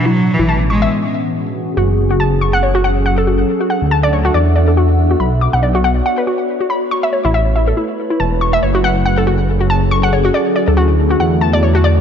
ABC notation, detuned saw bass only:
X:1
M:4/4
L:1/16
Q:"Swing 16ths" 1/4=140
K:F#m
V:1 name="Detuned saw bass" clef=bass
z3 A,,,4- A,,, z8 | F,,,16 | z3 D,,4- D,, E,,8 | B,,,3 B,,,4- B,,, z8 |
z3 A,,,4- A,,, z4 E,,,4 | F,,,16 | z3 D,,4- D,, E,,8 |]